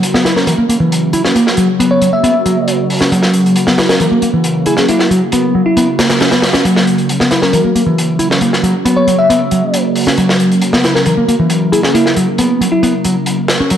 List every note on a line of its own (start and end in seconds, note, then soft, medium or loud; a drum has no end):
0.00 13.77 C#3 medium
0.00 13.77 F#3 medium
0.00 13.77 A#3 medium
0.00 6.63 F#4 medium
0.00 closed hi-hat medium
0.14 0.24 B3 medium
0.14 snare soft
0.25 0.35 E4 medium
0.25 snare soft
0.25 closed hi-hat medium
0.36 0.46 C#4 medium
0.36 0.43 A#4 medium
0.36 snare soft
0.47 0.53 E3 medium
0.47 0.54 A#4 medium
0.47 closed hi-hat medium
0.58 0.64 A#3 medium
0.69 0.75 A#3 medium
0.69 closed hi-hat medium
0.80 1.12 E3 medium
0.92 closed hi-hat medium
1.13 1.23 E4 medium
1.13 closed hi-hat medium
1.24 1.34 C#4 medium
1.24 snare soft
1.35 1.45 A#3 medium
1.35 closed hi-hat medium
1.47 snare soft
1.57 1.67 F#3 medium
1.57 closed hi-hat medium
1.80 2.01 B3 medium
1.80 closed hi-hat medium
1.91 2.11 C#5 medium
2.02 2.08 F#3 medium
2.02 closed hi-hat medium
2.13 2.75 E5 medium
2.23 2.33 B3 medium
2.23 closed hi-hat medium
2.46 2.55 F#3 medium
2.46 closed hi-hat medium
2.68 closed hi-hat medium
2.90 open hi-hat medium
3.01 3.11 C#4 medium
3.01 snare soft
3.12 3.55 F#3 medium
3.12 closed hi-hat medium
3.23 snare soft
3.33 closed hi-hat medium
3.46 closed hi-hat soft
3.56 closed hi-hat medium
3.67 3.77 B3 medium
3.67 snare soft
3.78 3.88 E4 medium
3.78 snare loud
3.78 closed hi-hat medium
3.89 3.99 C#4 medium
3.89 3.96 A#4 medium
3.89 snare loud
3.89 closed hi-hat medium
4.00 4.06 E3 medium
4.00 4.07 A#4 medium
4.00 closed hi-hat medium
4.11 4.17 A#3 medium
4.22 4.28 A#3 medium
4.22 closed hi-hat medium
4.34 4.65 E3 loud
4.44 closed hi-hat medium
4.66 4.76 E4 medium
4.66 4.74 G#4 medium
4.66 closed hi-hat medium
4.77 4.87 C#4 medium
4.77 4.85 G#4 medium
4.77 snare soft
4.88 4.98 A#3 medium
4.88 5.06 E4 medium
4.88 closed hi-hat medium
4.99 snare soft
5.11 5.20 F#3 medium
5.11 closed hi-hat medium
5.32 5.54 B3 medium
5.32 closed hi-hat medium
5.55 5.61 F#3 medium
5.66 5.99 E4 medium
5.77 5.86 B3 loud
5.77 closed hi-hat medium
5.99 6.09 A#3 medium
5.99 snare loud
5.99 closed hi-hat medium
6.10 6.19 A#3 medium
6.10 snare medium
6.10 closed hi-hat medium
6.20 6.31 C#4 medium
6.20 snare loud
6.20 closed hi-hat medium
6.31 6.41 B3 medium
6.31 snare loud
6.31 closed hi-hat medium
6.42 snare loud
6.42 closed hi-hat medium
6.53 6.63 C#4 medium
6.53 snare loud
6.53 closed hi-hat medium
6.65 7.08 F#3 medium
6.65 10.17 F#4 medium
6.65 closed hi-hat medium
6.76 snare medium
6.87 closed hi-hat medium
6.98 closed hi-hat soft
7.09 closed hi-hat medium
7.20 7.30 B3 medium
7.20 snare soft
7.31 7.41 E4 loud
7.31 snare soft
7.31 closed hi-hat medium
7.42 7.52 C#4 medium
7.42 7.49 A#4 medium
7.42 snare soft
7.53 7.59 E3 medium
7.53 7.60 A#4 medium
7.53 closed hi-hat medium
7.64 7.70 A#3 medium
7.75 7.81 A#3 medium
7.75 closed hi-hat medium
7.86 8.18 E3 medium
7.98 closed hi-hat medium
8.19 8.29 E4 medium
8.19 closed hi-hat medium
8.30 8.40 C#4 medium
8.30 snare medium
8.41 8.51 A#3 medium
8.41 closed hi-hat medium
8.53 snare soft
8.63 8.73 F#3 medium
8.63 closed hi-hat medium
8.85 9.06 B3 medium
8.85 closed hi-hat medium
8.97 9.16 C#5 medium
9.07 9.13 F#3 medium
9.07 closed hi-hat medium
9.19 9.80 E5 medium
9.30 9.39 B3 loud
9.30 closed hi-hat medium
9.51 9.61 F#3 medium
9.51 closed hi-hat medium
9.74 closed hi-hat medium
9.96 open hi-hat medium
10.07 10.17 C#4 medium
10.07 snare soft
10.18 10.61 F#3 loud
10.18 13.69 A#4 medium
10.18 closed hi-hat medium
10.29 snare medium
10.40 closed hi-hat medium
10.52 closed hi-hat soft
10.62 closed hi-hat medium
10.73 10.83 B3 medium
10.73 snare medium
10.84 10.94 E4 medium
10.84 snare medium
10.84 closed hi-hat medium
10.95 11.05 C#4 medium
10.95 11.02 A#4 medium
10.95 snare soft
11.06 11.12 E3 medium
11.06 11.13 A#4 medium
11.06 closed hi-hat medium
11.17 11.23 A#3 medium
11.28 11.34 A#3 medium
11.28 closed hi-hat medium
11.39 11.71 E3 loud
11.50 closed hi-hat medium
11.72 11.82 E4 loud
11.72 11.79 G#4 medium
11.72 closed hi-hat medium
11.83 11.93 C#4 medium
11.83 11.90 G#4 medium
11.83 snare soft
11.94 12.04 A#3 medium
11.94 12.12 E4 medium
11.94 closed hi-hat medium
12.06 snare soft
12.16 12.26 F#3 medium
12.16 closed hi-hat medium
12.38 12.60 B3 medium
12.38 closed hi-hat medium
12.61 12.66 F#3 medium
12.61 closed hi-hat medium
12.72 13.05 E4 medium
12.83 12.92 B3 loud
12.83 closed hi-hat medium
13.04 13.15 F#3 medium
13.04 closed hi-hat medium
13.26 closed hi-hat medium
13.48 snare medium
13.48 closed hi-hat medium
13.60 13.70 C#4 medium
13.70 13.77 F#3 loud
13.70 13.77 F#4 medium
13.70 closed hi-hat medium